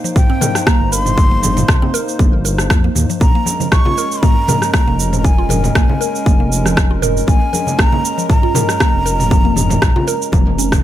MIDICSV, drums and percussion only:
0, 0, Header, 1, 2, 480
1, 0, Start_track
1, 0, Tempo, 508475
1, 1110, Time_signature, 4, 2, 24, 8
1, 10227, End_track
2, 0, Start_track
2, 0, Title_t, "Drums"
2, 47, Note_on_c, 9, 69, 56
2, 141, Note_off_c, 9, 69, 0
2, 150, Note_on_c, 9, 36, 127
2, 150, Note_on_c, 9, 45, 94
2, 156, Note_on_c, 9, 69, 43
2, 244, Note_off_c, 9, 36, 0
2, 244, Note_off_c, 9, 45, 0
2, 250, Note_off_c, 9, 69, 0
2, 386, Note_on_c, 9, 64, 100
2, 390, Note_on_c, 9, 45, 88
2, 390, Note_on_c, 9, 63, 114
2, 396, Note_on_c, 9, 69, 101
2, 481, Note_off_c, 9, 64, 0
2, 484, Note_off_c, 9, 63, 0
2, 485, Note_off_c, 9, 45, 0
2, 490, Note_off_c, 9, 69, 0
2, 520, Note_on_c, 9, 37, 65
2, 526, Note_on_c, 9, 69, 57
2, 615, Note_off_c, 9, 37, 0
2, 620, Note_off_c, 9, 69, 0
2, 630, Note_on_c, 9, 36, 127
2, 631, Note_on_c, 9, 37, 115
2, 636, Note_on_c, 9, 69, 43
2, 724, Note_off_c, 9, 36, 0
2, 725, Note_off_c, 9, 37, 0
2, 731, Note_off_c, 9, 69, 0
2, 874, Note_on_c, 9, 69, 99
2, 969, Note_off_c, 9, 69, 0
2, 999, Note_on_c, 9, 45, 74
2, 1005, Note_on_c, 9, 69, 53
2, 1094, Note_off_c, 9, 45, 0
2, 1099, Note_off_c, 9, 69, 0
2, 1106, Note_on_c, 9, 63, 74
2, 1110, Note_on_c, 9, 36, 127
2, 1115, Note_on_c, 9, 69, 42
2, 1200, Note_off_c, 9, 63, 0
2, 1205, Note_off_c, 9, 36, 0
2, 1209, Note_off_c, 9, 69, 0
2, 1348, Note_on_c, 9, 45, 75
2, 1354, Note_on_c, 9, 69, 93
2, 1357, Note_on_c, 9, 63, 98
2, 1442, Note_off_c, 9, 45, 0
2, 1448, Note_off_c, 9, 69, 0
2, 1451, Note_off_c, 9, 63, 0
2, 1475, Note_on_c, 9, 64, 80
2, 1480, Note_on_c, 9, 45, 88
2, 1485, Note_on_c, 9, 63, 63
2, 1486, Note_on_c, 9, 69, 53
2, 1569, Note_off_c, 9, 64, 0
2, 1575, Note_off_c, 9, 45, 0
2, 1579, Note_off_c, 9, 63, 0
2, 1581, Note_off_c, 9, 69, 0
2, 1590, Note_on_c, 9, 36, 123
2, 1591, Note_on_c, 9, 37, 110
2, 1597, Note_on_c, 9, 69, 43
2, 1684, Note_off_c, 9, 36, 0
2, 1686, Note_off_c, 9, 37, 0
2, 1692, Note_off_c, 9, 69, 0
2, 1720, Note_on_c, 9, 64, 91
2, 1814, Note_off_c, 9, 64, 0
2, 1836, Note_on_c, 9, 69, 97
2, 1930, Note_off_c, 9, 69, 0
2, 1966, Note_on_c, 9, 69, 56
2, 2061, Note_off_c, 9, 69, 0
2, 2070, Note_on_c, 9, 36, 124
2, 2073, Note_on_c, 9, 63, 98
2, 2076, Note_on_c, 9, 69, 42
2, 2165, Note_off_c, 9, 36, 0
2, 2167, Note_off_c, 9, 63, 0
2, 2170, Note_off_c, 9, 69, 0
2, 2316, Note_on_c, 9, 69, 102
2, 2411, Note_off_c, 9, 69, 0
2, 2440, Note_on_c, 9, 37, 64
2, 2446, Note_on_c, 9, 69, 56
2, 2534, Note_off_c, 9, 37, 0
2, 2540, Note_off_c, 9, 69, 0
2, 2550, Note_on_c, 9, 36, 123
2, 2550, Note_on_c, 9, 37, 108
2, 2555, Note_on_c, 9, 63, 59
2, 2556, Note_on_c, 9, 69, 44
2, 2644, Note_off_c, 9, 37, 0
2, 2645, Note_off_c, 9, 36, 0
2, 2649, Note_off_c, 9, 63, 0
2, 2650, Note_off_c, 9, 69, 0
2, 2789, Note_on_c, 9, 45, 77
2, 2795, Note_on_c, 9, 69, 91
2, 2883, Note_off_c, 9, 45, 0
2, 2889, Note_off_c, 9, 69, 0
2, 2926, Note_on_c, 9, 69, 51
2, 3021, Note_off_c, 9, 69, 0
2, 3021, Note_on_c, 9, 63, 68
2, 3031, Note_on_c, 9, 36, 121
2, 3035, Note_on_c, 9, 69, 40
2, 3116, Note_off_c, 9, 63, 0
2, 3125, Note_off_c, 9, 36, 0
2, 3130, Note_off_c, 9, 69, 0
2, 3264, Note_on_c, 9, 63, 88
2, 3275, Note_on_c, 9, 69, 97
2, 3359, Note_off_c, 9, 63, 0
2, 3370, Note_off_c, 9, 69, 0
2, 3399, Note_on_c, 9, 64, 66
2, 3405, Note_on_c, 9, 69, 54
2, 3493, Note_off_c, 9, 64, 0
2, 3500, Note_off_c, 9, 69, 0
2, 3510, Note_on_c, 9, 37, 107
2, 3511, Note_on_c, 9, 36, 122
2, 3516, Note_on_c, 9, 69, 40
2, 3604, Note_off_c, 9, 37, 0
2, 3605, Note_off_c, 9, 36, 0
2, 3610, Note_off_c, 9, 69, 0
2, 3638, Note_on_c, 9, 64, 104
2, 3733, Note_off_c, 9, 64, 0
2, 3756, Note_on_c, 9, 69, 90
2, 3850, Note_off_c, 9, 69, 0
2, 3887, Note_on_c, 9, 69, 54
2, 3981, Note_off_c, 9, 69, 0
2, 3989, Note_on_c, 9, 45, 89
2, 3991, Note_on_c, 9, 36, 116
2, 3995, Note_on_c, 9, 69, 40
2, 4084, Note_off_c, 9, 45, 0
2, 4085, Note_off_c, 9, 36, 0
2, 4089, Note_off_c, 9, 69, 0
2, 4229, Note_on_c, 9, 45, 93
2, 4232, Note_on_c, 9, 64, 90
2, 4233, Note_on_c, 9, 63, 96
2, 4235, Note_on_c, 9, 69, 96
2, 4324, Note_off_c, 9, 45, 0
2, 4327, Note_off_c, 9, 64, 0
2, 4328, Note_off_c, 9, 63, 0
2, 4330, Note_off_c, 9, 69, 0
2, 4361, Note_on_c, 9, 37, 62
2, 4367, Note_on_c, 9, 69, 56
2, 4455, Note_off_c, 9, 37, 0
2, 4461, Note_off_c, 9, 69, 0
2, 4470, Note_on_c, 9, 37, 107
2, 4471, Note_on_c, 9, 36, 122
2, 4476, Note_on_c, 9, 69, 42
2, 4565, Note_off_c, 9, 36, 0
2, 4565, Note_off_c, 9, 37, 0
2, 4571, Note_off_c, 9, 69, 0
2, 4717, Note_on_c, 9, 69, 88
2, 4811, Note_off_c, 9, 69, 0
2, 4840, Note_on_c, 9, 45, 72
2, 4846, Note_on_c, 9, 69, 49
2, 4935, Note_off_c, 9, 45, 0
2, 4940, Note_off_c, 9, 69, 0
2, 4951, Note_on_c, 9, 36, 112
2, 4953, Note_on_c, 9, 63, 65
2, 4958, Note_on_c, 9, 69, 41
2, 5046, Note_off_c, 9, 36, 0
2, 5047, Note_off_c, 9, 63, 0
2, 5052, Note_off_c, 9, 69, 0
2, 5182, Note_on_c, 9, 63, 88
2, 5191, Note_on_c, 9, 45, 83
2, 5197, Note_on_c, 9, 69, 90
2, 5277, Note_off_c, 9, 63, 0
2, 5286, Note_off_c, 9, 45, 0
2, 5291, Note_off_c, 9, 69, 0
2, 5309, Note_on_c, 9, 63, 56
2, 5322, Note_on_c, 9, 45, 87
2, 5323, Note_on_c, 9, 64, 70
2, 5328, Note_on_c, 9, 69, 49
2, 5403, Note_off_c, 9, 63, 0
2, 5417, Note_off_c, 9, 45, 0
2, 5417, Note_off_c, 9, 64, 0
2, 5423, Note_off_c, 9, 69, 0
2, 5431, Note_on_c, 9, 37, 105
2, 5432, Note_on_c, 9, 36, 120
2, 5437, Note_on_c, 9, 69, 39
2, 5526, Note_off_c, 9, 36, 0
2, 5526, Note_off_c, 9, 37, 0
2, 5532, Note_off_c, 9, 69, 0
2, 5565, Note_on_c, 9, 64, 103
2, 5659, Note_off_c, 9, 64, 0
2, 5679, Note_on_c, 9, 69, 88
2, 5773, Note_off_c, 9, 69, 0
2, 5810, Note_on_c, 9, 69, 51
2, 5904, Note_off_c, 9, 69, 0
2, 5912, Note_on_c, 9, 36, 111
2, 5914, Note_on_c, 9, 63, 84
2, 5919, Note_on_c, 9, 69, 39
2, 6006, Note_off_c, 9, 36, 0
2, 6008, Note_off_c, 9, 63, 0
2, 6013, Note_off_c, 9, 69, 0
2, 6157, Note_on_c, 9, 69, 86
2, 6252, Note_off_c, 9, 69, 0
2, 6284, Note_on_c, 9, 37, 59
2, 6289, Note_on_c, 9, 69, 53
2, 6378, Note_off_c, 9, 37, 0
2, 6383, Note_on_c, 9, 63, 62
2, 6384, Note_off_c, 9, 69, 0
2, 6391, Note_on_c, 9, 36, 117
2, 6393, Note_on_c, 9, 37, 109
2, 6399, Note_on_c, 9, 69, 41
2, 6477, Note_off_c, 9, 63, 0
2, 6486, Note_off_c, 9, 36, 0
2, 6487, Note_off_c, 9, 37, 0
2, 6493, Note_off_c, 9, 69, 0
2, 6631, Note_on_c, 9, 45, 82
2, 6637, Note_on_c, 9, 69, 86
2, 6726, Note_off_c, 9, 45, 0
2, 6731, Note_off_c, 9, 69, 0
2, 6770, Note_on_c, 9, 69, 48
2, 6864, Note_off_c, 9, 69, 0
2, 6864, Note_on_c, 9, 63, 61
2, 6871, Note_on_c, 9, 36, 109
2, 6879, Note_on_c, 9, 69, 39
2, 6958, Note_off_c, 9, 63, 0
2, 6965, Note_off_c, 9, 36, 0
2, 6974, Note_off_c, 9, 69, 0
2, 7112, Note_on_c, 9, 63, 84
2, 7118, Note_on_c, 9, 69, 87
2, 7206, Note_off_c, 9, 63, 0
2, 7213, Note_off_c, 9, 69, 0
2, 7238, Note_on_c, 9, 64, 76
2, 7248, Note_on_c, 9, 69, 53
2, 7333, Note_off_c, 9, 64, 0
2, 7343, Note_off_c, 9, 69, 0
2, 7351, Note_on_c, 9, 36, 114
2, 7355, Note_on_c, 9, 37, 107
2, 7360, Note_on_c, 9, 69, 40
2, 7445, Note_off_c, 9, 36, 0
2, 7449, Note_off_c, 9, 37, 0
2, 7455, Note_off_c, 9, 69, 0
2, 7482, Note_on_c, 9, 64, 100
2, 7577, Note_off_c, 9, 64, 0
2, 7600, Note_on_c, 9, 69, 88
2, 7694, Note_off_c, 9, 69, 0
2, 7728, Note_on_c, 9, 69, 53
2, 7823, Note_off_c, 9, 69, 0
2, 7831, Note_on_c, 9, 36, 109
2, 7832, Note_on_c, 9, 45, 99
2, 7838, Note_on_c, 9, 69, 36
2, 7925, Note_off_c, 9, 36, 0
2, 7927, Note_off_c, 9, 45, 0
2, 7932, Note_off_c, 9, 69, 0
2, 8067, Note_on_c, 9, 63, 104
2, 8071, Note_on_c, 9, 45, 102
2, 8074, Note_on_c, 9, 64, 99
2, 8077, Note_on_c, 9, 69, 87
2, 8161, Note_off_c, 9, 63, 0
2, 8165, Note_off_c, 9, 45, 0
2, 8168, Note_off_c, 9, 64, 0
2, 8171, Note_off_c, 9, 69, 0
2, 8201, Note_on_c, 9, 37, 64
2, 8207, Note_on_c, 9, 69, 53
2, 8295, Note_off_c, 9, 37, 0
2, 8301, Note_off_c, 9, 69, 0
2, 8311, Note_on_c, 9, 36, 110
2, 8312, Note_on_c, 9, 37, 108
2, 8317, Note_on_c, 9, 69, 40
2, 8406, Note_off_c, 9, 36, 0
2, 8406, Note_off_c, 9, 37, 0
2, 8412, Note_off_c, 9, 69, 0
2, 8556, Note_on_c, 9, 69, 90
2, 8651, Note_off_c, 9, 69, 0
2, 8683, Note_on_c, 9, 45, 83
2, 8689, Note_on_c, 9, 69, 50
2, 8777, Note_off_c, 9, 45, 0
2, 8781, Note_on_c, 9, 63, 71
2, 8783, Note_off_c, 9, 69, 0
2, 8791, Note_on_c, 9, 36, 117
2, 8796, Note_on_c, 9, 69, 40
2, 8876, Note_off_c, 9, 63, 0
2, 8885, Note_off_c, 9, 36, 0
2, 8891, Note_off_c, 9, 69, 0
2, 9024, Note_on_c, 9, 63, 86
2, 9031, Note_on_c, 9, 45, 83
2, 9036, Note_on_c, 9, 69, 91
2, 9118, Note_off_c, 9, 63, 0
2, 9125, Note_off_c, 9, 45, 0
2, 9131, Note_off_c, 9, 69, 0
2, 9153, Note_on_c, 9, 64, 79
2, 9159, Note_on_c, 9, 63, 58
2, 9160, Note_on_c, 9, 45, 100
2, 9166, Note_on_c, 9, 69, 51
2, 9248, Note_off_c, 9, 64, 0
2, 9253, Note_off_c, 9, 63, 0
2, 9254, Note_off_c, 9, 45, 0
2, 9260, Note_off_c, 9, 69, 0
2, 9270, Note_on_c, 9, 36, 119
2, 9270, Note_on_c, 9, 37, 111
2, 9276, Note_on_c, 9, 69, 39
2, 9365, Note_off_c, 9, 36, 0
2, 9365, Note_off_c, 9, 37, 0
2, 9371, Note_off_c, 9, 69, 0
2, 9403, Note_on_c, 9, 64, 104
2, 9497, Note_off_c, 9, 64, 0
2, 9514, Note_on_c, 9, 69, 92
2, 9609, Note_off_c, 9, 69, 0
2, 9647, Note_on_c, 9, 69, 53
2, 9741, Note_off_c, 9, 69, 0
2, 9744, Note_on_c, 9, 63, 86
2, 9750, Note_on_c, 9, 36, 108
2, 9750, Note_on_c, 9, 48, 62
2, 9756, Note_on_c, 9, 69, 39
2, 9839, Note_off_c, 9, 63, 0
2, 9845, Note_off_c, 9, 36, 0
2, 9845, Note_off_c, 9, 48, 0
2, 9851, Note_off_c, 9, 69, 0
2, 9882, Note_on_c, 9, 48, 58
2, 9976, Note_off_c, 9, 48, 0
2, 9997, Note_on_c, 9, 69, 88
2, 10091, Note_off_c, 9, 69, 0
2, 10121, Note_on_c, 9, 36, 84
2, 10121, Note_on_c, 9, 37, 69
2, 10121, Note_on_c, 9, 47, 73
2, 10127, Note_on_c, 9, 69, 54
2, 10215, Note_off_c, 9, 36, 0
2, 10216, Note_off_c, 9, 37, 0
2, 10216, Note_off_c, 9, 47, 0
2, 10222, Note_off_c, 9, 69, 0
2, 10227, End_track
0, 0, End_of_file